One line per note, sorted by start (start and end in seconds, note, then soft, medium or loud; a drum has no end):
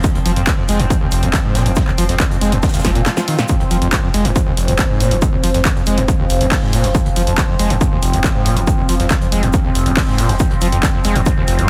0.00 0.10 F2 medium
0.00 3.48 F3 medium
0.00 3.48 C4 medium
0.00 kick loud
0.00 shaker medium
0.04 closed hi-hat medium
0.15 0.18 D#2 loud
0.15 closed hi-hat soft
0.26 0.36 F1 loud
0.26 0.32 F3 medium
0.26 open hi-hat loud
0.26 shaker medium
0.36 0.47 F1 medium
0.36 0.42 F2 medium
0.36 closed hi-hat medium
0.47 0.53 D#2 medium
0.47 kick loud
0.47 snare loud
0.47 clap loud
0.47 closed hi-hat medium
0.47 shaker loud
0.58 0.64 F2 medium
0.68 0.79 F1 loud
0.68 0.81 G#3 medium
0.68 snare soft
0.68 open hi-hat loud
0.68 shaker medium
0.80 0.90 F1 medium
0.80 0.85 F2 medium
0.80 closed hi-hat medium
0.90 0.96 F2 medium
0.90 kick loud
0.90 closed hi-hat medium
0.90 shaker medium
1.01 1.07 D#2 loud
1.11 1.22 F1 loud
1.11 1.24 F1 medium
1.11 open hi-hat loud
1.11 shaker medium
1.23 1.33 F1 medium
1.23 1.29 G#2 loud
1.23 closed hi-hat medium
1.33 1.40 D#2 medium
1.33 kick loud
1.33 snare loud
1.33 clap loud
1.33 closed hi-hat medium
1.33 shaker medium
1.44 1.57 G#2 medium
1.55 1.65 F1 loud
1.55 1.67 A#2 loud
1.55 snare loud
1.55 open hi-hat loud
1.55 shaker medium
1.66 1.76 F1 medium
1.66 1.72 F2 medium
1.66 closed hi-hat medium
1.76 1.83 F2 medium
1.76 kick loud
1.76 snare loud
1.76 closed hi-hat medium
1.76 shaker medium
1.87 1.91 D#2 loud
1.87 clap soft
1.98 2.09 F1 loud
1.98 2.04 F3 medium
1.98 open hi-hat loud
1.98 shaker medium
2.09 2.20 F1 medium
2.09 2.15 F2 medium
2.09 snare soft
2.09 closed hi-hat medium
2.19 2.26 D#2 medium
2.19 kick loud
2.19 snare loud
2.19 clap loud
2.19 closed hi-hat medium
2.19 shaker medium
2.31 2.37 F2 medium
2.31 closed hi-hat soft
2.41 2.52 F1 loud
2.41 2.54 G#3 medium
2.41 snare soft
2.41 open hi-hat loud
2.41 shaker medium
2.52 2.63 F1 medium
2.52 2.58 F2 medium
2.52 closed hi-hat medium
2.63 2.69 F2 medium
2.63 kick loud
2.63 snare medium
2.63 closed hi-hat medium
2.63 swell medium
2.63 shaker medium
2.68 snare medium
2.68 shaker medium
2.73 2.80 D#2 loud
2.73 snare medium
2.73 open hi-hat medium
2.73 shaker medium
2.79 snare medium
2.79 shaker medium
2.84 2.95 F1 loud
2.84 2.91 F3 medium
2.84 kick medium
2.84 snare medium
2.84 snare loud
2.84 open hi-hat loud
2.84 shaker medium
2.95 3.06 F1 medium
2.95 3.01 A#2 loud
2.95 closed hi-hat medium
3.06 3.10 A#2 medium
3.06 snare loud
3.06 snare medium
3.06 clap loud
3.06 closed hi-hat medium
3.06 shaker medium
3.17 3.21 F3 loud
3.17 snare loud
3.17 snare medium
3.17 shaker medium
3.28 3.37 D#3 medium
3.28 open hi-hat loud
3.38 3.44 A#2 medium
3.38 snare soft
3.38 snare medium
3.38 closed hi-hat medium
3.38 shaker medium
3.48 3.55 F2 medium
3.48 11.70 F3 medium
3.48 11.70 C4 medium
3.48 kick loud
3.48 closed hi-hat medium
3.48 shaker medium
3.60 3.64 D#2 loud
3.60 closed hi-hat soft
3.71 3.81 F1 loud
3.71 3.77 F3 medium
3.71 open hi-hat loud
3.71 shaker medium
3.82 3.92 F1 medium
3.82 3.88 F2 medium
3.82 closed hi-hat medium
3.92 3.98 D#2 medium
3.92 kick loud
3.92 snare loud
3.92 clap loud
3.92 closed hi-hat medium
3.92 shaker medium
4.03 4.09 F2 medium
4.14 4.24 F1 loud
4.14 4.26 G#3 medium
4.14 snare soft
4.14 open hi-hat loud
4.14 shaker medium
4.25 4.35 F1 medium
4.25 4.31 F2 medium
4.25 closed hi-hat medium
4.36 4.42 F2 medium
4.36 kick loud
4.36 closed hi-hat medium
4.36 shaker medium
4.46 4.52 D#2 loud
4.57 4.69 F1 medium
4.57 4.68 F1 loud
4.57 open hi-hat loud
4.57 shaker medium
4.68 4.79 F1 medium
4.68 4.74 G#2 loud
4.68 closed hi-hat medium
4.78 4.85 D#2 medium
4.78 kick loud
4.78 snare loud
4.78 clap loud
4.78 closed hi-hat medium
4.78 shaker medium
4.90 5.02 G#2 medium
5.00 5.11 F1 loud
5.00 5.13 A#2 loud
5.00 open hi-hat loud
5.00 shaker medium
5.11 5.22 F1 medium
5.11 5.17 F2 medium
5.11 closed hi-hat medium
5.22 5.28 F2 medium
5.22 kick loud
5.22 closed hi-hat medium
5.22 shaker medium
5.33 5.36 D#2 loud
5.44 5.54 F1 loud
5.44 5.50 F3 medium
5.44 open hi-hat loud
5.44 shaker medium
5.54 5.65 F1 medium
5.54 5.60 F2 medium
5.54 snare soft
5.54 closed hi-hat medium
5.65 5.71 D#2 medium
5.65 kick loud
5.65 snare loud
5.65 clap loud
5.65 closed hi-hat medium
5.65 shaker medium
5.76 5.82 F2 medium
5.76 closed hi-hat soft
5.86 5.97 F1 loud
5.86 5.99 G#3 medium
5.86 open hi-hat loud
5.86 shaker medium
5.98 6.08 F1 medium
5.98 6.04 F2 medium
5.98 closed hi-hat medium
6.08 6.14 F2 medium
6.08 kick loud
6.08 closed hi-hat medium
6.08 shaker medium
6.19 6.25 D#2 loud
6.30 6.40 F1 loud
6.30 6.42 F1 medium
6.30 open hi-hat loud
6.30 shaker medium
6.41 6.51 F1 medium
6.41 6.47 G#2 loud
6.41 closed hi-hat medium
6.51 6.57 D#2 medium
6.51 kick loud
6.51 snare loud
6.51 clap loud
6.51 closed hi-hat medium
6.51 open hi-hat medium
6.62 6.75 G#2 medium
6.72 6.83 F1 loud
6.72 6.85 A#2 loud
6.72 snare soft
6.72 open hi-hat loud
6.72 shaker medium
6.84 6.94 F1 medium
6.84 6.90 F2 medium
6.84 snare soft
6.84 closed hi-hat medium
6.95 7.01 F2 medium
6.95 kick loud
6.95 closed hi-hat medium
6.95 shaker medium
7.05 7.09 D#2 loud
7.05 closed hi-hat soft
7.16 7.26 F1 loud
7.16 7.22 F3 medium
7.16 open hi-hat loud
7.16 shaker medium
7.27 7.38 F1 medium
7.27 7.33 F2 medium
7.27 closed hi-hat medium
7.38 7.44 D#2 medium
7.38 kick loud
7.38 snare loud
7.38 clap loud
7.38 closed hi-hat medium
7.38 shaker medium
7.49 7.55 F2 medium
7.59 7.70 F1 loud
7.59 7.72 G#3 medium
7.59 snare soft
7.59 open hi-hat loud
7.59 shaker medium
7.70 7.81 F1 medium
7.70 7.76 F2 medium
7.70 closed hi-hat medium
7.81 7.87 F2 medium
7.81 kick loud
7.81 closed hi-hat medium
7.81 shaker medium
7.92 7.98 D#2 loud
8.03 8.13 F1 loud
8.03 8.15 F1 medium
8.03 open hi-hat loud
8.03 shaker medium
8.13 8.24 F1 medium
8.13 8.19 G#2 loud
8.13 closed hi-hat medium
8.24 8.30 D#2 medium
8.24 kick loud
8.24 snare loud
8.24 clap loud
8.24 closed hi-hat medium
8.24 shaker medium
8.35 8.47 G#2 medium
8.46 8.56 F1 loud
8.46 8.58 A#2 loud
8.46 open hi-hat loud
8.46 shaker medium
8.57 8.67 F1 medium
8.57 8.63 F2 medium
8.57 closed hi-hat medium
8.67 8.73 F2 medium
8.67 kick loud
8.67 closed hi-hat medium
8.67 shaker loud
8.78 8.82 D#2 loud
8.89 8.99 F1 loud
8.89 8.95 F3 medium
8.89 open hi-hat loud
8.89 shaker medium
8.99 9.10 F1 medium
8.99 9.06 F2 medium
8.99 snare soft
8.99 closed hi-hat medium
9.10 9.16 D#2 medium
9.10 kick loud
9.10 snare loud
9.10 clap loud
9.10 closed hi-hat medium
9.10 shaker medium
9.21 9.27 F2 medium
9.21 closed hi-hat soft
9.32 9.42 F1 loud
9.32 9.44 G#3 medium
9.32 open hi-hat loud
9.32 shaker medium
9.43 9.54 F1 medium
9.43 9.49 F2 medium
9.43 closed hi-hat medium
9.53 9.60 F2 medium
9.53 kick loud
9.53 closed hi-hat medium
9.53 shaker medium
9.65 9.70 D#2 loud
9.75 9.85 F1 loud
9.75 9.88 F1 medium
9.75 open hi-hat loud
9.75 shaker medium
9.86 9.97 F1 medium
9.86 9.92 G#2 loud
9.86 closed hi-hat medium
9.97 10.03 D#2 medium
9.97 kick loud
9.97 snare loud
9.97 clap loud
9.97 closed hi-hat medium
9.97 open hi-hat medium
10.08 10.20 G#2 medium
10.17 10.29 F1 loud
10.17 10.31 A#2 loud
10.17 snare soft
10.17 open hi-hat loud
10.17 shaker medium
10.29 10.40 F1 medium
10.29 10.35 F2 medium
10.29 snare soft
10.29 closed hi-hat medium
10.39 10.46 F2 medium
10.39 kick loud
10.39 closed hi-hat medium
10.39 shaker medium
10.51 10.54 D#2 loud
10.51 closed hi-hat soft
10.61 10.72 F1 loud
10.61 10.68 F3 medium
10.61 open hi-hat loud
10.61 shaker medium
10.72 10.83 F1 medium
10.72 10.78 F2 medium
10.72 closed hi-hat medium
10.83 10.89 D#2 medium
10.83 kick loud
10.83 snare loud
10.83 clap loud
10.83 closed hi-hat medium
10.83 shaker medium
10.94 11.00 F2 medium
11.04 11.15 F1 loud
11.04 11.17 G#3 medium
11.04 snare soft
11.04 open hi-hat loud
11.04 shaker medium
11.16 11.26 F1 medium
11.16 11.21 F2 medium
11.16 closed hi-hat medium
11.26 11.32 F2 medium
11.26 kick loud
11.26 closed hi-hat medium
11.26 shaker medium
11.37 11.43 D#2 loud
11.48 11.60 F1 medium
11.48 11.58 F1 loud
11.48 open hi-hat loud
11.48 shaker medium
11.59 11.69 F1 medium
11.59 11.70 G#2 loud
11.59 closed hi-hat medium